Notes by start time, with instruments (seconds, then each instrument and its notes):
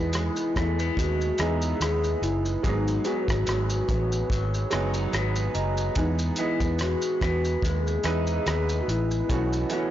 Already playing: fingered electric bass E2, upright piano E3 G#3 B3 D#4 G#4 D#5, clean electric guitar B3 E4, soft synth lead E4
0.13 clean electric guitar G#3, cross-stick, closed hi-hat, shaker
0.36 shaker
0.56 fingered electric bass E2, clean electric guitar A3, kick, cross-stick, closed hi-hat, shaker
0.79 clean electric guitar B3, shaker
0.97 fingered electric bass D#2, clean electric guitar G#3, soft synth lead F#4, kick, closed hi-hat, shaker
1.21 shaker
1.38 fingered electric bass E2, upright piano G#3 B3 D#4 E4 G#4, clean electric guitar D#4, soft synth lead G#4, cross-stick, closed hi-hat, shaker
1.62 shaker
1.80 fingered electric bass D#2, clean electric guitar B3, soft synth lead G#4, cross-stick, closed hi-hat, shaker
2.04 shaker
2.22 fingered electric bass F#1, soft synth lead E4, closed hi-hat, shaker
2.46 shaker
2.63 fingered electric bass G#1, clean electric guitar G#2, upright piano F#3 G#3 B3 D#4 G#4, soft synth lead D#4, kick, closed hi-hat, shaker
2.88 shaker
3.05 upright piano F#3 G#3 B3 D#4 G#4, clean electric guitar B3, soft synth lead F#4, closed hi-hat, shaker
3.28 fingered electric bass G#1, kick, cross-stick, shaker
3.47 fingered electric bass G#1, clean electric guitar F#3, soft synth lead F#4, cross-stick, closed hi-hat, shaker
3.70 shaker
3.88 fingered electric bass A1, clean electric guitar B3, kick, closed hi-hat, shaker
4.12 shaker
4.30 fingered electric bass G#1, clean electric guitar F#3, kick, closed hi-hat, shaker
4.54 shaker
4.70 fingered electric bass F#1, upright piano F#3 G#3 B3 D#4 G#4, clean electric guitar C#4, cross-stick, closed hi-hat, shaker
4.94 clean electric guitar D#4, shaker
5.13 fingered electric bass G#1, clean electric guitar B3, cross-stick, closed hi-hat, shaker
5.36 shaker
5.54 fingered electric bass F#1, clean electric guitar D#4, closed hi-hat, shaker
5.77 shaker
5.95 fingered electric bass E2, upright piano E3 G#3 B3 D#4 G#4, soft synth lead D#4, kick, closed hi-hat, shaker
6.19 shaker
6.36 upright piano E3 G#3 B3 D#5, clean electric guitar B3, soft synth lead E4, closed hi-hat, shaker
6.41 upright piano G#4
6.60 fingered electric bass E2, kick, shaker
6.79 clean electric guitar G#3, soft synth lead F#4, cross-stick, closed hi-hat, shaker
7.02 shaker
7.21 fingered electric bass E2, clean electric guitar B3, kick, cross-stick, closed hi-hat, shaker
7.45 shaker
7.62 fingered electric bass D#2, clean electric guitar G#3, soft synth lead G#4, kick, closed hi-hat, shaker
7.87 shaker
8.04 fingered electric bass E2, upright piano G#3 B3 D#4 E4 B4, clean electric guitar D#4, cross-stick, closed hi-hat, shaker
8.27 shaker
8.46 fingered electric bass D#2, clean electric guitar B3, cross-stick, closed hi-hat, shaker
8.69 shaker
8.82 soft synth lead F#4
8.88 fingered electric bass A1, soft synth lead E4, closed hi-hat, shaker
9.11 shaker
9.29 fingered electric bass B1, clean electric guitar B2, upright piano E3 A3 B3 C#4 F#4, kick, closed hi-hat, shaker
9.53 shaker
9.69 upright piano E3 A3 B3 C#4 F#4, clean electric guitar C#4, closed hi-hat, shaker
9.75 soft synth lead E4